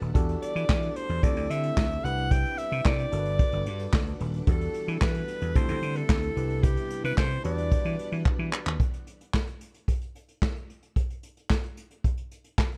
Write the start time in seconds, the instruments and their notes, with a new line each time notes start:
Already playing: string machine G3 D4 A4 B4 F#5, tine electric piano D4 F#4 A4 B4
0.01 slap bass D#1, closed hi-hat
0.14 slap bass E2, string machine E3 G3 B3 D4, tine electric piano D4 F#4 G4 A4, kick, closed hi-hat
0.29 closed hi-hat
0.42 alto saxophone D5, closed hi-hat
0.56 slap bass E3, closed hi-hat
0.69 slap bass E3, kick, snare, clap
0.82 closed hi-hat
0.96 alto saxophone C5, closed hi-hat
1.09 slap bass E2, closed hi-hat
1.23 slap bass D2, string machine D3 A3 C4 E4, tine electric piano C4 E4 G4 A4, alto saxophone D5, kick, closed hi-hat
1.36 slap bass D2, closed hi-hat
1.50 slap bass D3, alto saxophone E5, closed hi-hat
1.63 closed hi-hat
1.77 slap bass D2, kick, snare, clap
1.91 closed hi-hat
2.04 slap bass C2, string machine C3 G3 B3 D4 E4, tine electric piano D4 E4 G4 B4, alto saxophone F#5, closed hi-hat
2.17 closed hi-hat
2.31 alto saxophone G5, kick, closed hi-hat
2.45 closed hi-hat
2.58 alto saxophone E5, closed hi-hat
2.72 slap bass C3, closed hi-hat
2.85 slap bass C3, alto saxophone D5, kick, snare, clap
2.98 closed hi-hat
3.11 slap bass G1, tine electric piano D4 F#4 A4 A#4, string machine A4 B4 F#5, closed hi-hat
3.20 tine electric piano B4
3.25 closed hi-hat
3.39 kick, closed hi-hat
3.52 slap bass G1, closed hi-hat
3.66 slap bass G2, closed hi-hat
3.79 closed hi-hat
3.93 slap bass D2, kick, snare, clap
4.06 closed hi-hat
4.20 slap bass D#1, closed hi-hat
4.33 closed hi-hat
4.47 slap bass E2, string machine E3 G3 B3, tine electric piano D4 F#4 G4 A4, alto saxophone A4, kick, closed hi-hat
4.61 closed hi-hat
4.74 closed hi-hat
4.88 slap bass E3, closed hi-hat
5.01 slap bass E3, alto saxophone B4, kick, snare, clap
5.14 closed hi-hat
5.28 closed hi-hat
5.41 slap bass E2, closed hi-hat
5.55 slap bass D2, string machine D3 A3 C4 E4, tine electric piano C4 E4 G4 A4, alto saxophone C5, kick, closed hi-hat
5.68 slap bass D2, closed hi-hat
5.82 slap bass D3, closed hi-hat
5.96 alto saxophone A4, closed hi-hat
6.09 slap bass D2, kick, snare, clap
6.23 closed hi-hat
6.36 slap bass C2, string machine C3 G3 B3 D4, tine electric piano D4 E4 G4 B4, closed hi-hat
6.50 closed hi-hat
6.63 alto saxophone G4, kick, closed hi-hat
6.77 closed hi-hat
6.90 closed hi-hat
7.04 slap bass C3, alto saxophone B4, closed hi-hat
7.18 slap bass C3, alto saxophone C5, kick, snare, clap
7.31 closed hi-hat
7.44 slap bass E2, string machine E3 G3 B3 F#5, tine electric piano D4 F#4 G4 B4, alto saxophone D5, closed hi-hat
7.58 closed hi-hat
7.72 kick, closed hi-hat
7.85 slap bass E3, closed hi-hat
7.99 closed hi-hat
8.12 slap bass E3, closed hi-hat
8.26 kick, clap
8.39 slap bass E3
8.53 clap
8.66 slap bass D#2, clap
8.80 kick, closed hi-hat
8.93 closed hi-hat
9.07 closed hi-hat
9.21 closed hi-hat
9.34 kick, snare, clap
9.47 closed hi-hat
9.61 closed hi-hat
9.74 closed hi-hat
9.88 kick, closed hi-hat
10.01 closed hi-hat
10.15 closed hi-hat
10.28 closed hi-hat
10.42 kick, snare, clap
10.56 closed hi-hat
10.70 closed hi-hat
10.83 closed hi-hat
10.96 kick, closed hi-hat
11.10 closed hi-hat
11.23 closed hi-hat
11.37 closed hi-hat
11.50 kick, snare, clap
11.63 closed hi-hat
11.77 closed hi-hat
11.91 closed hi-hat
12.04 kick, closed hi-hat
12.17 closed hi-hat
12.31 closed hi-hat
12.44 closed hi-hat
12.58 kick, snare, clap
12.72 closed hi-hat